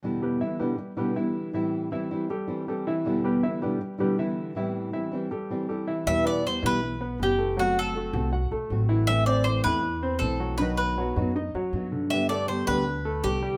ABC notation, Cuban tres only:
X:1
M:4/4
L:1/8
Q:1/4=159
K:Em
V:1 name="Cuban tres"
z8 | z8 | z8 | z8 |
e d c B3 G2 | F A3 z4 | e d c B3 A2 | B B3 z4 |
e d c B3 G2 |]